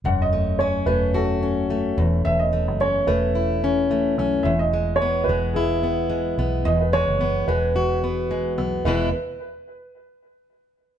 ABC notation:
X:1
M:4/4
L:1/16
Q:"Swing 16ths" 1/4=109
K:E
V:1 name="Upright piano"
f d3 c2 B2 A6 z2 | e d3 c2 B8 z2 | e d3 c2 B2 G6 z2 | d B c4 B8 z2 |
B2 z12 z2 |]
V:2 name="Steel-string acoustic guitar"
F,,2 A,2 C2 A,2 F2 C2 A,2 E,,2 | E,,2 A,2 C2 A,2 E2 C2 A,2 C2 | E,,2 G,2 B,2 G,2 E2 B,2 G,2 B,2 | E,,2 G,2 B,2 G,2 F2 B,2 G,2 B,2 |
[E,,B,,E,G,B,E]2 z12 z2 |]
V:3 name="Fingered electric bass" clef=bass
E,,,6 E,,,8 E,,,2 | E,,,3 F,,,3 E,,,8 B,,,2 | E,,,6 E,,,8 B,,,2 | E,,,3 F,,,3 E,,,8 B,,,2 |
E,,,2 z12 z2 |]